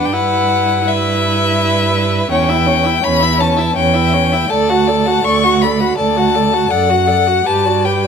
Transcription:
0.00 0.14 D4 medium
0.00 0.10 B4 medium
0.05 0.15 G5 medium
0.12 2.27 G2 medium
0.12 0.86 E4 medium
0.12 0.84 B4 medium
0.12 0.89 F#5 medium
0.86 2.29 E4 medium
0.86 2.28 B4 medium
0.86 2.31 E5 medium
2.31 2.95 E2 medium
2.31 2.51 C#4 medium
2.31 2.50 C#5 medium
2.31 3.05 G5 medium
2.49 2.68 E4 soft
2.49 2.68 E5 soft
2.66 2.87 C#4 medium
2.66 2.85 C#5 medium
2.84 3.03 E4 soft
2.84 3.01 E5 soft
3.02 3.68 E2 medium
3.02 3.24 C#4 medium
3.02 3.21 C#5 soft
3.02 3.42 B5 medium
3.20 3.42 E4 soft
3.20 3.40 E5 soft
3.38 3.60 C#4 medium
3.38 3.58 C#5 soft
3.38 3.76 A5 medium
3.57 3.76 E4 soft
3.57 3.75 E5 soft
3.75 4.42 E2 medium
3.75 3.97 C#4 soft
3.75 3.95 C#5 soft
3.75 4.51 G5 medium
3.93 4.15 E4 soft
3.93 4.15 E5 soft
4.13 4.34 C#4 medium
4.13 4.33 C#5 soft
4.32 4.51 E4 medium
4.32 4.49 E5 soft
4.50 5.16 D2 medium
4.50 4.71 A4 medium
4.50 4.71 D5 medium
4.50 5.26 A5 medium
4.69 4.91 F#4 medium
4.69 4.89 F#5 soft
4.87 5.09 A4 medium
4.87 5.07 D5 soft
5.06 5.25 F#4 soft
5.06 5.25 F#5 medium
5.24 5.89 D2 medium
5.24 5.45 A4 medium
5.24 5.45 D5 soft
5.24 5.63 C#6 medium
5.44 5.65 F#4 soft
5.44 5.63 F#5 soft
5.62 5.82 A4 soft
5.62 5.82 D5 soft
5.62 5.97 B5 medium
5.80 5.98 F#4 soft
5.80 5.97 F#5 soft
5.97 6.62 D2 medium
5.97 6.18 A4 soft
5.97 6.19 D5 soft
5.97 6.73 A5 medium
6.17 6.36 F#4 soft
6.17 6.37 F#5 soft
6.35 6.55 A4 soft
6.35 6.55 D5 soft
6.53 6.71 F#4 soft
6.53 6.70 F#5 soft
6.70 7.37 F#2 medium
6.70 6.91 A4 medium
6.70 6.92 D5 soft
6.70 7.48 F#5 medium
6.89 7.09 F#4 soft
6.89 7.10 F#5 soft
7.07 7.29 A4 soft
7.07 7.29 D5 soft
7.27 7.45 F#4 soft
7.27 7.46 F#5 soft
7.46 8.07 G2 medium
7.46 7.66 G4 soft
7.46 7.67 B4 soft
7.46 7.86 A5 medium
7.65 7.86 F#4 soft
7.65 7.87 D5 soft
7.84 8.06 G4 soft
7.84 8.06 B4 soft
7.84 8.07 G5 medium

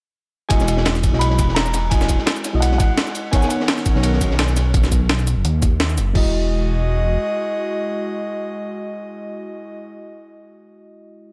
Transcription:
0.49 1.11 E1 loud
0.49 1.10 G#3 loud
0.49 1.10 E4 medium
0.49 1.11 F#4 medium
0.49 1.11 D#5 loud
0.49 1.16 G#5 loud
0.49 kick loud
0.49 closed hi-hat medium
0.49 ride medium
0.60 snare medium
0.60 shaker soft
0.68 closed hi-hat medium
0.68 ride medium
0.68 shaker medium
0.77 snare medium
0.85 snare loud
0.85 closed hi-hat medium
0.85 ride medium
0.95 snare soft
0.95 shaker soft
1.03 kick loud
1.03 closed hi-hat medium
1.03 ride medium
1.03 shaker medium
1.12 1.40 B1 loud
1.12 1.89 G#3 medium
1.12 1.89 E4 medium
1.12 1.90 F#4 medium
1.12 1.90 D#5 medium
1.12 snare soft
1.19 1.56 B5 loud
1.19 closed hi-hat loud
1.19 ride medium
1.30 snare soft
1.39 2.17 E1 loud
1.39 kick medium
1.39 closed hi-hat medium
1.39 ride medium
1.39 shaker medium
1.48 snare soft
1.55 1.88 A#5 loud
1.55 snare loud
1.55 closed hi-hat loud
1.55 ride medium
1.65 snare soft
1.65 shaker soft
1.73 snare soft
1.73 closed hi-hat medium
1.73 ride medium
1.73 shaker medium
1.90 2.51 G#3 medium
1.90 2.52 E4 medium
1.90 2.52 F#4 medium
1.90 2.52 D#5 medium
1.90 2.57 G#5 loud
1.90 kick loud
1.90 closed hi-hat loud
1.90 ride medium
2.01 snare medium
2.01 snare soft
2.01 shaker soft
2.08 kick medium
2.08 closed hi-hat medium
2.08 ride medium
2.08 shaker medium
2.18 snare soft
2.26 snare loud
2.26 closed hi-hat loud
2.26 ride medium
2.36 ride soft
2.36 shaker soft
2.44 snare soft
2.44 closed hi-hat medium
2.44 ride medium
2.44 shaker medium
2.53 2.79 B1 loud
2.53 3.30 G#3 medium
2.53 3.31 E4 medium
2.53 3.31 F#4 medium
2.53 3.32 D#5 medium
2.60 2.77 F#5 medium
2.60 closed hi-hat loud
2.60 ride medium
2.72 snare soft
2.78 3.28 F#5 medium
2.78 kick loud
2.78 closed hi-hat medium
2.78 ride medium
2.78 shaker medium
2.97 snare loud
2.97 closed hi-hat loud
2.97 ride medium
3.07 snare soft
3.07 shaker soft
3.15 closed hi-hat medium
3.15 ride medium
3.15 shaker medium
3.31 4.73 D#3 medium
3.31 3.92 B3 loud
3.31 4.72 C#4 medium
3.31 3.93 D#4 medium
3.31 4.72 A#4 medium
3.31 3.93 A#4 medium
3.31 3.94 C#5 loud
3.31 3.37 G#5 loud
3.31 kick loud
3.31 closed hi-hat medium
3.31 ride medium
3.36 3.42 F#5 medium
3.40 3.50 G#5 loud
3.40 snare medium
3.40 shaker soft
3.49 4.16 F#5 medium
3.49 closed hi-hat medium
3.49 ride medium
3.49 shaker medium
3.60 snare medium
3.68 snare loud
3.68 closed hi-hat medium
3.68 ride medium
3.78 snare soft
3.78 shaker soft
3.86 kick loud
3.86 closed hi-hat medium
3.86 ride medium
3.86 shaker medium
3.94 4.20 B1 loud
3.94 4.71 B3 medium
3.94 4.72 D#4 medium
3.94 4.72 A#4 medium
3.94 4.73 C#5 medium
3.94 snare soft
4.03 closed hi-hat loud
4.03 ride loud
4.13 snare soft
4.21 5.35 B1 loud
4.21 kick medium
4.21 closed hi-hat medium
4.21 ride medium
4.21 shaker medium
4.31 snare soft
4.39 snare loud
4.39 closed hi-hat loud
4.39 ride medium
4.48 snare soft
4.48 shaker soft
4.57 snare soft
4.57 closed hi-hat medium
4.57 ride medium
4.57 shaker medium
4.74 kick loud
4.74 closed hi-hat medium
4.84 snare soft
4.84 shaker soft
4.92 kick medium
4.92 closed hi-hat medium
4.92 shaker medium
5.09 snare loud
5.09 closed hi-hat medium
5.19 shaker soft
5.27 closed hi-hat medium
5.27 shaker medium
5.36 5.44 F#1 loud
5.45 5.99 D#2 loud
5.45 closed hi-hat medium
5.62 kick loud
5.62 closed hi-hat medium
5.62 shaker medium
5.80 snare loud
5.80 closed hi-hat loud
5.89 shaker soft
5.98 6.14 F#1 medium
5.98 closed hi-hat medium
5.98 shaker medium
6.13 7.17 E1 loud
6.13 9.88 G#3 medium
6.13 9.74 G#3 medium
6.13 9.89 E4 medium
6.13 9.73 F#4 medium
6.13 9.90 F#4 medium
6.13 9.73 D#5 medium
6.13 9.91 D#5 loud
6.13 kick loud
6.13 crash medium

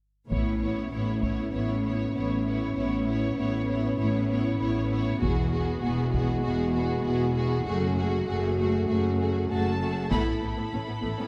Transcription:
0.29 0.84 A1 soft
0.29 0.84 A2 soft
0.29 0.60 B3 soft
0.29 5.18 B3 soft
0.29 5.18 C#4 soft
0.29 0.61 E4 soft
0.29 0.59 C#5 soft
0.29 taiko soft
0.60 0.92 B3 soft
0.60 0.91 E4 soft
0.60 0.91 C#5 soft
0.91 1.46 A1 soft
0.91 1.45 A2 soft
0.91 1.21 B3 soft
0.91 1.21 E4 soft
0.91 1.21 C#5 soft
1.22 1.52 B3 soft
1.22 1.51 E4 soft
1.22 1.52 C#5 soft
1.22 taiko soft
1.52 2.07 A1 soft
1.52 2.07 A2 soft
1.52 1.83 B3 soft
1.52 1.81 E4 soft
1.52 1.84 C#5 soft
1.83 2.13 B3 soft
1.83 2.13 E4 soft
1.83 2.15 C#5 soft
2.14 2.69 A1 soft
2.14 2.69 A2 soft
2.14 2.42 B3 soft
2.14 2.43 E4 soft
2.14 2.46 C#5 soft
2.43 2.74 B3 soft
2.43 2.74 E4 soft
2.43 2.76 C#5 soft
2.75 3.30 A1 soft
2.75 3.30 A2 soft
2.75 3.07 B3 soft
2.75 3.05 E4 soft
2.75 3.07 C#5 soft
3.06 3.37 B3 soft
3.06 3.36 E4 soft
3.06 3.38 C#5 soft
3.37 3.91 A1 soft
3.37 3.91 A2 soft
3.37 3.68 B3 soft
3.37 3.66 E4 soft
3.37 3.68 C#5 soft
3.67 3.99 B3 soft
3.67 3.96 E4 soft
3.67 3.98 C#5 soft
3.97 4.52 A1 soft
3.97 4.52 A2 medium
3.97 4.28 B3 soft
3.97 4.27 E4 soft
3.97 4.29 C#5 soft
4.28 4.59 B3 soft
4.28 4.58 E4 soft
4.28 4.60 C#5 soft
4.60 5.14 A1 soft
4.60 5.14 A2 soft
4.60 4.89 B3 soft
4.60 4.89 E4 soft
4.60 4.91 C#5 soft
4.90 5.20 B3 soft
4.90 5.20 E4 soft
4.90 5.22 C#5 soft
5.20 5.75 E1 medium
5.20 5.75 E2 medium
5.20 7.62 G#3 medium
5.20 5.51 B3 soft
5.20 7.62 F#4 medium
5.20 5.51 F#4 medium
5.20 5.51 G#4 soft
5.20 taiko soft
5.52 5.82 B3 soft
5.52 5.81 F#4 soft
5.52 5.80 G#4 soft
5.81 6.36 E1 medium
5.81 6.36 E2 medium
5.81 6.13 B3 soft
5.81 6.12 F#4 soft
5.81 6.11 G#4 soft
6.12 6.42 B3 soft
6.12 6.42 F#4 soft
6.12 6.43 G#4 soft
6.12 taiko soft
6.43 6.98 E1 medium
6.43 6.98 E2 medium
6.43 6.74 B3 soft
6.43 6.72 F#4 medium
6.43 6.74 G#4 soft
6.73 7.04 B3 soft
6.73 7.03 F#4 soft
6.73 7.05 G#4 soft
7.04 7.59 E1 medium
7.04 7.59 E2 medium
7.04 7.35 B3 soft
7.04 7.35 F#4 soft
7.04 7.36 G#4 medium
7.36 7.66 B3 soft
7.36 7.65 F#4 soft
7.36 7.66 G#4 soft
7.65 8.20 F#1 medium
7.65 8.20 F#2 medium
7.65 7.96 A3 medium
7.65 9.78 A3 medium
7.65 9.77 F#4 medium
7.65 7.96 F#4 medium
7.65 7.97 G#4 medium
7.97 8.26 A3 soft
7.97 8.27 F#4 soft
7.97 8.26 G#4 medium
8.27 8.82 F#1 medium
8.27 8.81 F#2 medium
8.27 8.58 A3 soft
8.27 8.58 F#4 soft
8.27 8.56 G#4 soft
8.57 8.88 A3 soft
8.57 8.87 F#4 soft
8.57 8.87 G#4 soft
8.88 9.43 F#1 medium
8.88 9.43 F#2 medium
8.88 9.19 A3 soft
8.88 9.19 F#4 soft
8.88 9.18 G#4 soft
9.19 9.49 A3 soft
9.19 9.49 F#4 soft
9.19 9.48 G#4 soft
9.49 10.04 F#1 soft
9.49 10.05 F#2 soft
9.49 9.79 A3 soft
9.49 9.79 F#4 soft
9.49 9.80 G#4 soft
9.49 10.07 A5 medium
9.80 10.10 A3 soft
9.80 10.11 F#4 soft
9.80 10.12 G#4 soft
10.11 10.26 A1 medium
10.11 10.26 A2 medium
10.11 10.26 A3 medium
10.11 10.41 A3 medium
10.11 10.25 B3 medium
10.11 11.28 E4 medium
10.11 10.41 E4 medium
10.11 11.28 A4 medium
10.11 11.28 B5 medium
10.11 taiko medium
10.27 10.34 A2 soft
10.27 10.33 B3 soft
10.27 10.33 C#4 soft
10.42 10.48 A1 soft
10.42 10.49 A2 soft
10.42 10.49 B3 soft
10.57 10.64 A2 medium
10.57 10.63 A3 soft
10.57 10.63 B3 soft
10.73 10.79 A1 soft
10.73 10.79 A2 soft
10.73 10.79 B3 soft
10.73 10.80 C#4 soft
10.88 10.95 A2 soft
10.88 10.95 B3 soft
11.02 11.09 A1 soft
11.02 11.10 A2 medium
11.02 11.09 A3 soft
11.02 11.08 B3 soft
11.19 11.26 A2 soft
11.19 11.25 B3 soft
11.19 11.25 C#4 soft

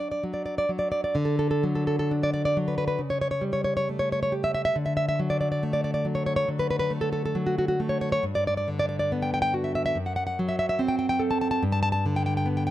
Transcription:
0.00 0.22 F#3 soft
0.00 1.16 D4 soft
0.00 0.10 D5 medium
0.12 0.23 D5 medium
0.23 0.68 F#3 soft
0.34 0.44 D5 soft
0.46 0.57 D5 medium
0.58 0.70 D5 medium
0.69 1.15 F#3 soft
0.79 0.90 D5 medium
0.92 1.03 D5 medium
1.04 1.16 D5 medium
1.15 2.97 D3 medium
1.25 1.38 A4 medium
1.39 1.50 A4 medium
1.51 1.63 A4 medium
1.63 2.56 F#3 soft
1.75 1.86 A4 medium
1.87 1.98 A4 medium
1.99 2.11 A4 medium
2.11 3.01 D4 medium
2.23 2.32 D5 medium
2.34 2.44 D5 medium
2.45 2.57 D5 medium
2.57 3.01 F#3 soft
2.68 2.77 B4 medium
2.78 2.86 B4 medium
2.88 3.00 B4 medium
2.99 4.70 C#3 medium
3.10 3.20 C#5 medium
3.21 3.30 C#5 medium
3.31 3.43 C#5 medium
3.41 4.74 G3 soft
3.53 3.63 C#5 medium
3.64 3.76 C#5 medium
3.77 3.88 C#5 medium
3.89 4.76 A3 medium
3.99 4.10 C#5 medium
4.12 4.21 C#5 medium
4.23 4.33 C#5 medium
4.32 4.76 G4 soft
4.44 4.53 E5 medium
4.54 4.64 E5 medium
4.65 4.76 E5 medium
4.76 6.45 D3 medium
4.86 4.96 E5 medium
4.97 5.07 E5 medium
5.09 5.19 E5 medium
5.19 6.04 F#3 soft
5.30 5.39 D5 medium
5.41 5.51 D5 medium
5.52 5.63 D5 medium
5.63 6.89 A3 soft
5.73 5.83 D5 medium
5.84 5.93 D5 medium
5.94 6.06 D5 medium
6.05 7.34 F#3 soft
6.15 6.25 C#5 medium
6.26 6.35 C#5 medium
6.36 6.48 C#5 medium
6.48 8.20 D3 soft
6.59 6.69 B4 medium
6.71 6.78 B4 medium
6.79 6.91 B4 medium
6.90 7.79 A3 medium
7.01 7.11 A4 medium
7.13 7.24 A4 medium
7.26 7.36 A4 medium
7.35 8.24 F#3 medium
7.47 7.57 F#4 medium
7.58 7.67 F#4 medium
7.68 7.80 F#4 medium
7.80 8.24 A3 soft
7.89 8.00 C#5 medium
8.01 8.11 C#5 medium
8.12 8.24 C#5 medium
8.23 9.92 G2 medium
8.35 8.46 D5 medium
8.47 8.56 D5 medium
8.57 8.68 D5 medium
8.68 9.97 D3 medium
8.79 8.88 D5 medium
8.99 9.11 D5 medium
9.12 9.97 B3 medium
9.22 9.33 G5 medium
9.34 9.41 G5 medium
9.42 9.53 G5 medium
9.54 9.97 F#4 soft
9.64 9.74 E5 medium
9.75 9.84 E5 medium
9.86 9.97 E5 medium
9.95 11.59 F#2 medium
10.06 10.15 F#5 medium
10.16 10.25 F#5 medium
10.27 10.38 F#5 medium
10.39 11.64 F#3 medium
10.49 10.58 E5 medium
10.59 10.68 E5 medium
10.69 10.80 E5 medium
10.79 11.63 C4 medium
10.88 10.98 G5 medium
10.99 11.08 G5 medium
11.09 11.21 G5 medium
11.19 11.63 A4 medium
11.31 11.40 A5 medium
11.41 11.50 A5 medium
11.51 11.63 A5 medium
11.63 12.71 G2 medium
11.72 11.81 A5 medium
11.83 11.91 A5 medium
11.92 12.04 A5 medium
12.06 12.71 D3 medium
12.16 12.25 G5 medium
12.26 12.36 G5 medium
12.37 12.47 G5 medium
12.46 12.71 B3 medium
12.57 12.66 G5 medium
12.67 12.71 G5 medium

